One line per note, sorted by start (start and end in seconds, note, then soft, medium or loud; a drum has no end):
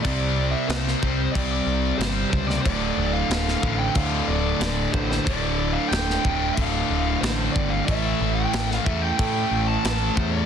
0.03 0.54 C2 medium
0.03 1.00 C3 medium
0.03 1.00 G3 loud
0.03 1.01 C4 loud
0.03 0.54 D5 medium
0.03 kick loud
0.03 crash medium
0.51 0.69 E5 medium
0.68 0.94 C2 medium
0.68 1.32 C5 medium
0.68 snare loud
0.68 crash medium
0.88 snare soft
1.02 1.27 C2 medium
1.02 1.99 C3 medium
1.02 1.98 G3 medium
1.02 1.98 C4 medium
1.02 kick medium
1.33 1.59 C2 medium
1.33 2.62 C3 medium
1.33 2.63 G3 medium
1.33 2.63 C4 medium
1.33 1.98 D5 medium
1.33 kick loud
1.33 crash medium
1.66 1.91 C2 medium
1.98 2.24 G1 medium
1.98 2.63 C3 medium
1.98 2.64 G3 medium
1.98 2.29 C5 medium
1.98 snare loud
1.98 crash medium
2.03 2.65 C4 medium
2.31 2.57 C#2 medium
2.31 2.46 C5 medium
2.31 kick medium
2.46 2.60 D5 medium
2.46 snare soft
2.62 2.90 D1 loud
2.62 3.65 D2 loud
2.62 3.14 D5 medium
2.62 kick loud
2.66 3.61 A2 medium
2.66 3.62 D3 loud
2.66 crash medium
2.97 3.22 D1 medium
3.13 3.79 F5 medium
3.29 3.54 D1 medium
3.29 snare loud
3.29 crash medium
3.48 snare soft
3.63 3.87 A1 medium
3.63 4.59 D2 medium
3.63 4.59 A2 medium
3.63 4.59 D3 medium
3.63 kick medium
3.79 3.94 G5 medium
3.95 5.24 D2 medium
3.95 4.20 D2 loud
3.95 5.25 A2 medium
3.95 5.25 D3 medium
3.95 4.29 F5 loud
3.95 kick loud
3.95 crash medium
4.28 4.53 D1 medium
4.28 4.93 D5 medium
4.60 4.85 D1 loud
4.60 5.24 D2 medium
4.60 5.25 A2 medium
4.60 5.25 D3 medium
4.60 snare loud
4.60 crash medium
4.94 5.18 A1 medium
4.94 5.09 C5 medium
4.94 kick medium
5.11 5.25 C5 medium
5.11 snare soft
5.25 5.76 D1 loud
5.25 6.22 D2 loud
5.25 6.23 A2 loud
5.25 6.23 D3 medium
5.25 5.76 D5 loud
5.25 kick loud
5.25 crash medium
5.73 5.88 F5 medium
5.88 6.16 D1 loud
5.88 6.54 G5 loud
5.92 snare loud
5.92 crash medium
6.10 snare soft
6.24 6.49 D1 medium
6.24 7.21 D2 medium
6.24 7.21 A2 medium
6.24 7.21 D3 medium
6.24 kick medium
6.55 6.82 D1 loud
6.55 7.86 D2 medium
6.55 7.86 A2 medium
6.55 7.23 F5 loud
6.55 kick loud
6.55 crash medium
6.59 7.87 D3 medium
6.90 7.14 D1 medium
7.21 7.47 A1 loud
7.21 7.86 D2 medium
7.21 7.86 A2 medium
7.21 7.53 C5 medium
7.21 snare loud
7.21 crash medium
7.25 7.87 D3 medium
7.53 7.80 G1 medium
7.53 7.71 D5 loud
7.53 kick medium
7.70 7.86 F5 medium
7.86 8.13 A1 medium
7.86 8.84 A2 medium
7.86 8.84 E3 loud
7.86 8.83 A3 loud
7.86 8.34 E5 loud
7.86 kick loud
7.86 crash medium
8.21 8.45 A1 medium
8.34 8.85 G5 loud
8.53 8.78 A1 medium
8.53 snare loud
8.53 crash medium
8.71 snare soft
8.84 9.11 E2 medium
8.84 9.82 A2 medium
8.84 9.82 E3 medium
8.84 9.82 A3 medium
8.84 9.02 E5 medium
8.84 kick medium
9.02 9.16 G5 loud
9.17 10.46 A2 medium
9.17 9.44 A2 loud
9.17 10.46 E3 medium
9.17 10.46 A3 medium
9.17 9.69 G5 loud
9.17 kick loud
9.17 crash medium
9.51 9.76 A1 medium
9.67 10.18 A5 loud
9.83 10.09 A1 medium
9.83 10.46 A2 medium
9.83 10.46 E3 medium
9.83 10.46 A3 medium
9.83 snare loud
9.83 crash medium
10.16 10.42 E2 medium
10.16 10.32 C5 medium
10.16 kick medium
10.32 10.46 D5 medium